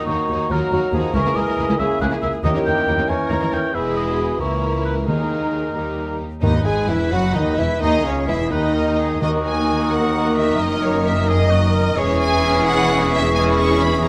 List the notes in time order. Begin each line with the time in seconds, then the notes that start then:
Already playing: D#3 A#3 D#4 F#4 A#5
0.06 D#2 A#3 D#4 F#4 C#5
0.29 D#2 A#3 D#4 F#4
0.50 D#2 F#3 A#3 D#4 F4 F#4 A#4 A#5
0.71 D#2 F#3 A#3 D#4 F#4
0.93 D#2 F3 A#3 D#4 F#4 G#4
1.13 C#2 E3 A#3 E4 G#4 A#4 C#5 G#5
1.26 C#2 A#3 E4 G#4
1.36 C#2 A#3 E4 G#4 D#5
1.48 C#2 A#3 E4 G#4
1.58 C#2 A#3 E4 G#4
1.69 C#2 A#3 E4 G#4
1.79 C#2 C#3 A#3 E4 G#4 E5
2.01 C#2 A#3 E4 G#4 F#5
2.11 C#2 A#3 E4 G#4
2.22 C#2 A#3 E4 G#4 E5
2.43 D#2 D#3 A#3 C#4 D#4 E4 G4 A#4 C#5 D#5 G5
2.55 D#2 A#3 D#4 C#5
2.66 D#2 A#3 D#4 C#5 G5
2.76 D#2 A#3 D#4 C#5
2.86 D#2 A#3 D#4 C#5
2.98 D#2 A#3 D#4 C#5
3.08 D#2 E3 A#3 D#4 A#4 C#5 G#5 C#6
3.29 D#2 A#3 D#4 C#5 A#5
3.40 D#2 A#3 D#4 C#5
3.52 D#2 A#3 D#4 C#5 G5
3.73 E1 E2 E3 G#3 B3 E4 G#4 B4 E5 B5
3.97 D#5
4.09 F#4
4.40 C#2 E3 A#3 E4 A#4 C#5 A#5
4.85 B4
5.07 D#2 D#3 G#3 A#3 D#4 G#4 A#4 A#5
5.74 D#2 D#3 G3 A#3 D#4 G4 A#5
6.42 D#2 G#2 D#3 D#4 B4 D#5
6.65 G#1 G#2 G#3 G#4 G#5
6.88 E1 E2 E3 E4 E5
7.11 F#1 F#2 F#3 F#4 F#5
7.34 D#2 D#3 D#4 D#5
7.57 E1 E2 E3 E4 E5
7.80 D#2 D#3 D#4 G#4 D#5
8.03 C#2 C#3 C#4 C#5
8.27 E1 E2 E3 E4 E5
8.50 D#2 D#3 D#4 B4 D#5
8.75 A#4
8.98 G#4
9.20 D#2 D#3 A#3 D#4 F#4 A#4 D#5 D#6
9.46 G#5
9.92 F#5
10.37 E5
10.60 F#1 F#2 A#4 D#5
10.83 C#5
11.06 E5
11.29 G#4 D#5
11.50 F#4
11.74 A#4
11.96 E1 E2 E3 G#3 C#4 E4 G#4 C#5 C#6
12.20 G#5
12.66 F#5
13.12 E5
13.34 E3 G#3 C#4 E4 G#4 G#5
13.59 C#6
13.80 B5
14.03 E3 G#3 C#4 E4 G#4 A#5